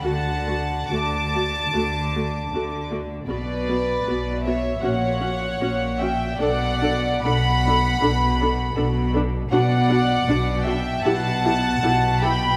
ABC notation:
X:1
M:4/4
L:1/8
Q:1/4=77
K:Bm
V:1 name="Violin section"
a2 d'4- d' z | d3 e f3 g | f2 b4- b z | f3 g a3 b |]
V:2 name="Violin section"
f2 a4- a z | B3 c c3 e | d2 f4- f z | d3 e f3 g |]
V:3 name="Viola section"
[A,F] [A,F] [A,F] [A,F] [A,F] [A,F] [A,F] [A,F] | [B,F] [B,F] [B,F] [B,F] [CF] [CF] [CF] [CF] | [DA] [DA] [DA] [DA] [DA] [DA] [DA] [DA] | [DF] [DF] [DF] [DF] [EG] [EG] [EG] [EG] |]
V:4 name="Cello section" clef=bass
D,2 D,2 D,2 D,2 | B,,2 B,,2 ^A,,2 A,,2 | B,,2 B,,2 B,,2 B,,2 | B,,2 B,,2 B,,2 B,,2 |]
V:5 name="Double bass section" clef=bass
D,,2 D,,2 D,,2 D,,2 | B,,,2 B,,,2 ^A,,,2 A,,,2 | B,,,2 B,,,2 B,,,2 B,,,2 | B,,,2 B,,,2 B,,,2 B,,,2 |]